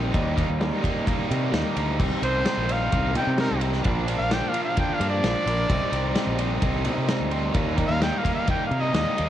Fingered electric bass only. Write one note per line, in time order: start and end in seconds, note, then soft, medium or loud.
0.00 0.10 A#1 medium
0.14 0.45 D#2 loud
0.49 0.70 D#2 medium
1.31 1.51 C3 medium
1.52 1.63 D#2 medium
1.76 1.97 D2 medium
2.00 2.10 C2 medium
2.22 2.43 C2 medium
2.57 2.88 A#1 medium
2.93 3.16 C2 medium
3.15 3.25 C3 medium
3.27 3.47 C3 medium
3.51 3.81 C2 medium
3.85 4.15 A#1 loud
4.19 4.40 A#1 medium
5.00 5.20 G2 medium
5.23 5.34 A#1 medium
5.46 5.66 A#1 medium
5.69 5.80 C2 medium
5.92 6.13 C2 medium
6.27 6.57 A#1 medium
6.63 6.88 C2 medium
6.86 6.96 C3 medium
6.98 7.18 C3 medium
7.20 7.50 D2 medium
7.55 7.85 D#2 loud
7.89 8.09 D#2 medium
8.71 8.91 C3 medium
8.94 9.04 D#2 medium
9.19 9.29 D#2 medium